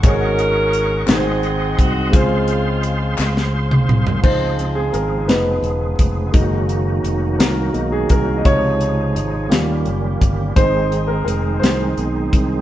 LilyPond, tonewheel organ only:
<<
  \new Staff \with { instrumentName = "Tonewheel organ" } { \time 6/8 \key des \major \tempo 4. = 57 << { des'''4. c'''4.~ | c'''2. | <f aes'>2. | <ees ges'>2. |
<f aes'>4. <ees g'>4. | <c' aes'>2. | } \\ { ges''2. | f''2. | des2. | ees'2.~ |
ees'4. des'4. | ees'2. | } >> }
  \new Staff \with { instrumentName = "Tonewheel organ" } { \time 6/8 \key des \major << { ees''2. | c''2. | c'4. ces'4. | bes2. |
c4. bes4. | aes2. | } \\ { aes'2.~ | aes'2. | aes2. | ges2. |
aes4. g4. | ees2. | } >> }
>>